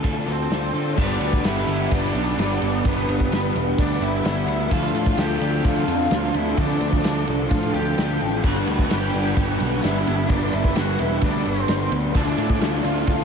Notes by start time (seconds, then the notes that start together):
Already playing: C4
0.04 D2 D3 A3 D4 F4 A4, kick, open hi-hat
0.27 D2 A3 C4 D4 F4 A4, open hi-hat
0.50 D2 D3 C4 D4 F4 A4, snare, open hi-hat
0.73 D3 A3 D4 F4 A4, open hi-hat
0.96 G1 G2 D3 G3 B3 D4 B4, kick, crash
1.20 D2, ride
1.33 kick
1.44 G1 G3 B3 D4 E4 B4, snare, ride, tambourine
1.67 G1 D4, ride
1.91 G1 G3 B3 D4 B4, kick, ride
2.13 B1 B3 D4 B4, ride
2.36 G1 G3 B3 D4 B4, snare, ride, tambourine
2.61 G1 B3, ride
2.84 G1 G2 D3 G3 B3 D4 B4, kick, ride
3.08 G1, ride
3.20 kick
3.31 G1 G3 B3 D4 B4, snare, ride, tambourine
3.55 E1 D4, ride
3.77 D2 G3 B3 D4 B4, kick, ride
4.00 G1 B3 D4 E4 B4, ride
4.23 G1 G3 B3 D4 B4, snare, ride, tambourine
4.47 D2 B3 E4, ride
4.70 D2 D3 F3 A3 D4 F4 A4, kick, ride
4.93 A2, ride
5.06 kick
5.17 D2 D3 C4 D4 F4 G4 A4, snare, ride, tambourine
5.41 D2 D4 G4, ride
5.62 D2 D3 F3 D4 F4 A4, kick, ride
5.87 F2 C4 D4 F4 A4, ride
6.10 D2 D3 D4 F4 A4, snare, ride, tambourine
6.34 D2 C4 E4, ride
6.57 D2 D3 F3 A3 D4 F4 A4, kick, ride
6.81 D2, ride
6.93 kick
7.03 D2 D3 C4 D4 F4 A4, snare, ride, tambourine
7.27 C2 D4, ride
7.49 A2 D3 F3 D4 F4 A4, kick, ride
7.74 D2 C4 D4 F4 G4 A4, ride
7.97 D2 D3 D4 F4 A4, snare, ride, tambourine
8.20 A1 C4, ride
8.42 G1 G2 D3 G3 B3 D4 F#4, kick, crash
8.46 G3 B4
8.67 D2, ride
8.79 kick
8.89 G1 G3 B3 D4 G4 B4, snare, ride, tambourine
9.13 G1 D4, ride
9.36 G1 G3 B3 D4 G4 B4, kick, ride
9.47 F#4
9.60 B1 B3 D4 B4, ride
9.82 G1 G3 B3 D4 E4 B4, snare, ride, tambourine
10.06 G1 B3, ride
10.28 G1 G2 D3 G3 B3 D4 B4, kick, ride
10.53 G1 E4, ride
10.64 kick
10.75 G1 G3 B3 D4 F#4 B4, snare, ride, tambourine
10.98 E1 D4 E4, ride
11.21 D2 G3 B3 D4 B4, kick, ride
11.45 G1 B3 C4 D4 B4, ride
11.68 G1 G3 B3 D4 B4, snare, ride, tambourine
11.91 D2 B3, ride
12.14 D2 D3 A3 D4 F4 A4, kick, ride
12.37 A2, ride
12.50 kick
12.60 D2 D3 A3 D4 F4 A4, snare, ride, tambourine
12.84 D2 C4 F4, ride
13.07 D2 D3 A3 D4 F4 A4, kick, ride